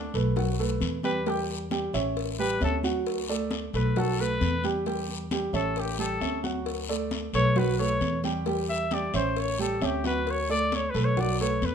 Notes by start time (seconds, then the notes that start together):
Already playing: D4
0.14 B1 A3 A4 B4, cowbell, high conga, short guiro
0.36 F#3 F#4 F#5, cowbell, high conga, low conga, long guiro
0.59 A3 A4 B4, cowbell, high conga
0.80 E2, cowbell, high conga, short guiro
1.03 G3 G4 B4 G5, cowbell, high conga, short guiro
1.26 G3 G4 G5, cowbell, high conga, long guiro
1.49 high conga
1.71 G3 G4 G5, cowbell, high conga, short guiro
1.93 A1 C#4 C#5 E5, cowbell, high conga, short guiro
2.16 cowbell, high conga, long guiro
2.38 G3 G4 B4 G5, high conga
2.61 D2 C#4 A4 C#5 E5, cowbell, high conga, short guiro
2.83 F#3 F#4 F#5, high conga, short guiro
3.06 cowbell, high conga, long guiro
3.28 A3 A4 D5, cowbell, high conga
3.51 cowbell, high conga, short guiro
3.73 B1 A3 A4 B4, cowbell, high conga, short guiro
3.96 F#3 F#4 A4 F#5, cowbell, high conga, low conga, long guiro
4.19 A3 A4 B4, cowbell, high conga
4.41 E2, cowbell, high conga, short guiro
4.64 G3 G4 G5, cowbell, high conga, short guiro
4.86 G3 G4 G5, cowbell, long guiro
5.08 high conga
5.31 G3 G4 G5, cowbell, high conga, short guiro
5.53 A1 C#4 A4 C#5 E5, cowbell, high conga, short guiro
5.76 G4, cowbell, high conga, long guiro
5.98 G3 G4 A4 G5, high conga
6.21 D2 C#4 C#5 E5, cowbell, high conga, short guiro
6.43 F#3 F#4 F#5, high conga, short guiro
6.66 cowbell, high conga, long guiro
6.88 A3 A4 D5, cowbell, high conga
7.11 cowbell, high conga, short guiro
7.33 B1 A3 A4 B4 C#5, cowbell, high conga, short guiro
7.56 F#3 F#4 B4 F#5, cowbell, high conga, low conga, long guiro
7.79 A3 A4 B4 C#5, cowbell, high conga
8.01 E2, cowbell, high conga, short guiro
8.24 G3 G4 G5, cowbell, high conga, short guiro
8.46 G3 G4 G5, cowbell, high conga, long guiro
8.69 E5, high conga
8.91 G3 G4 D5 G5, cowbell, high conga, short guiro
9.13 A1 C#4 C5 C#5 E5, cowbell, high conga, short guiro
9.37 C#5, cowbell, high conga, long guiro
9.59 G3 G4 A4 G5, high conga
9.81 D2 C#4 G4 C#5 E5, cowbell, high conga, short guiro
10.04 F#3 F#4 B4 F#5, high conga, short guiro
10.27 C#5, cowbell, high conga, long guiro
10.49 A3 A4 D5, cowbell, high conga
10.72 C#5, cowbell, high conga, short guiro
10.90 B4
10.94 B1 A3 A4 B4, cowbell, high conga, short guiro
11.05 C#5
11.17 F#3 F#4 D5 F#5, cowbell, high conga, low conga, long guiro
11.40 A3 A4 B4 C#5, cowbell, high conga
11.62 E2 B4, cowbell, high conga, short guiro